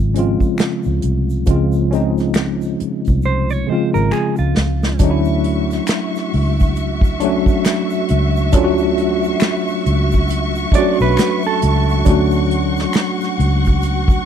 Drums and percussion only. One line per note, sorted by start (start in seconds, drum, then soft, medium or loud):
0.16 closed hi-hat medium
0.40 kick medium
0.40 shaker soft
0.58 finger snap medium
0.58 snare loud
0.58 closed hi-hat medium
0.58 shaker medium
0.83 shaker soft
1.02 closed hi-hat medium
1.30 shaker soft
1.46 kick loud
1.46 closed hi-hat medium
1.46 shaker medium
1.72 shaker soft
1.93 closed hi-hat medium
1.93 shaker soft
2.18 snare soft
2.18 closed hi-hat soft
2.18 shaker soft
2.34 finger snap medium
2.34 snare loud
2.34 closed hi-hat medium
2.34 shaker medium
2.61 shaker soft
2.80 closed hi-hat medium
3.05 kick medium
3.05 closed hi-hat soft
3.05 shaker soft
3.22 shaker soft
3.50 shaker soft
3.94 shaker soft
4.11 finger snap medium
4.11 shaker medium
4.36 shaker soft
4.57 snare medium
4.83 snare medium
4.83 shaker soft
4.99 kick loud
4.99 closed hi-hat medium
4.99 shaker medium
5.25 shaker soft
5.44 closed hi-hat medium
5.71 snare soft
5.71 closed hi-hat soft
5.71 shaker soft
5.87 finger snap medium
5.87 snare loud
5.87 closed hi-hat medium
5.87 shaker medium
6.15 snare soft
6.15 shaker soft
6.33 open hi-hat soft
6.60 kick medium
6.60 shaker medium
6.76 closed hi-hat medium
6.76 shaker medium
7.01 kick loud
7.01 shaker soft
7.20 closed hi-hat medium
7.46 kick medium
7.46 shaker soft
7.65 finger snap medium
7.65 snare loud
7.65 closed hi-hat loud
7.65 shaker medium
7.90 shaker soft
8.09 closed hi-hat medium
8.36 shaker soft
8.52 kick loud
8.52 closed hi-hat medium
8.52 shaker medium
8.78 shaker soft
8.98 closed hi-hat medium
9.24 shaker soft
9.40 finger snap medium
9.40 snare loud
9.40 closed hi-hat medium
9.40 shaker medium
9.68 shaker soft
9.86 closed hi-hat medium
10.12 kick medium
10.12 shaker medium
10.28 closed hi-hat medium
10.28 shaker medium
10.55 shaker soft
10.72 kick medium
10.72 closed hi-hat medium
11.00 shaker soft
11.17 finger snap medium
11.17 snare loud
11.17 closed hi-hat loud
11.17 shaker medium
11.43 shaker soft
11.62 closed hi-hat medium
11.89 shaker soft
12.05 kick loud
12.05 closed hi-hat medium
12.05 shaker medium
12.31 shaker medium
12.51 closed hi-hat medium
12.77 snare soft
12.77 shaker soft
12.93 finger snap medium
12.93 snare loud
12.93 closed hi-hat medium
12.93 shaker medium
13.21 snare soft
13.21 shaker soft
13.40 closed hi-hat medium
13.64 kick medium
13.64 closed hi-hat soft
13.64 shaker medium
13.82 closed hi-hat medium
13.82 shaker medium
14.08 kick loud
14.08 shaker soft